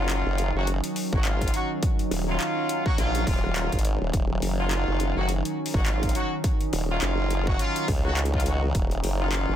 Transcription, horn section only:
0.00 0.51 F#3 medium
0.00 0.51 C#4 medium
0.00 0.51 D#4 medium
0.00 0.51 F4 medium
0.55 0.67 F#3 medium
0.55 0.67 C#4 medium
0.55 0.67 D#4 medium
0.55 0.67 F#4 loud
1.13 1.23 F#3 medium
1.13 1.23 C#4 medium
1.13 1.23 D#4 medium
1.13 1.23 F#4 loud
1.25 1.51 F#3 medium
1.25 1.51 C#4 medium
1.25 1.51 D#4 medium
1.25 1.51 F4 medium
1.54 1.69 F#3 medium
1.54 1.69 C#4 medium
1.54 1.69 D#4 medium
1.54 1.69 F#4 loud
2.28 2.82 F#3 medium
2.28 2.82 C#4 medium
2.28 2.82 D#4 medium
2.28 2.82 F4 loud
2.85 2.96 F#3 loud
2.85 2.96 C#4 medium
2.85 2.96 D#4 medium
2.85 2.96 F#4 loud
2.98 3.24 F#3 loud
2.98 3.24 C#4 medium
2.98 3.24 D#4 medium
2.98 3.24 F4 loud
3.26 3.52 F#3 medium
3.26 3.52 C#4 medium
3.26 3.52 D#4 medium
3.26 3.52 F4 loud
3.55 3.78 F#3 medium
3.55 3.78 C#4 medium
3.55 3.78 D#4 medium
3.55 3.78 F4 loud
4.59 5.12 F#3 medium
4.59 5.12 C#4 medium
4.59 5.13 D#4 medium
4.59 5.13 F4 loud
5.16 5.28 F#3 medium
5.16 5.28 C#4 medium
5.16 5.28 D#4 medium
5.16 5.28 F#4 medium
5.74 5.84 F#3 medium
5.74 5.84 C#4 medium
5.74 5.84 D#4 medium
5.74 5.84 F#4 loud
5.86 6.12 F#3 medium
5.86 6.12 C#4 medium
5.86 6.12 D#4 medium
5.86 6.12 F4 medium
6.15 6.31 F#3 medium
6.15 6.31 C#4 medium
6.15 6.31 D#4 medium
6.15 6.31 F#4 loud
6.89 7.43 F#3 medium
6.89 7.43 C#4 medium
6.89 7.43 D#4 medium
6.89 7.43 F4 loud
7.47 7.57 F#3 loud
7.47 7.57 C#4 medium
7.47 7.57 D#4 medium
7.47 7.57 F#4 loud
7.59 7.85 F#3 loud
7.59 7.85 C#4 medium
7.59 7.85 D#4 medium
7.59 7.85 F4 loud
8.04 8.16 F#3 medium
8.04 8.16 C#4 medium
8.04 8.16 D#4 medium
8.04 8.16 F#4 loud
8.33 8.44 F#3 medium
8.33 8.44 C#4 medium
8.33 8.44 D#4 medium
8.33 8.44 F4 medium
8.46 8.62 F#3 medium
8.46 8.62 C#4 medium
8.46 8.62 D#4 medium
8.46 8.62 F#4 medium
9.20 9.56 F#3 medium
9.20 9.56 C#4 medium
9.20 9.56 D#4 medium
9.20 9.56 F4 medium

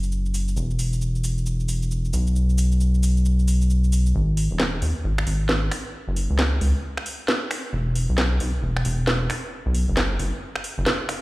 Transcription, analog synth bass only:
0.00 0.55 F#1 medium
0.57 2.12 E1 medium
2.13 4.13 B1 medium
4.15 4.49 G#1 loud
4.51 4.81 D#1 medium
4.82 4.94 D#2 medium
5.04 5.25 G#1 medium
5.27 5.70 G#1 medium
6.08 6.27 F#1 loud
6.30 6.60 C#2 medium
6.61 6.73 C#2 medium
7.73 8.07 E1 loud
8.09 8.39 B1 medium
8.40 8.53 B1 medium
8.63 8.83 E1 medium
8.85 9.28 E1 medium
9.66 9.85 B1 loud
9.88 10.18 F#1 medium
10.19 10.32 F#1 medium
10.78 10.86 F#1 loud

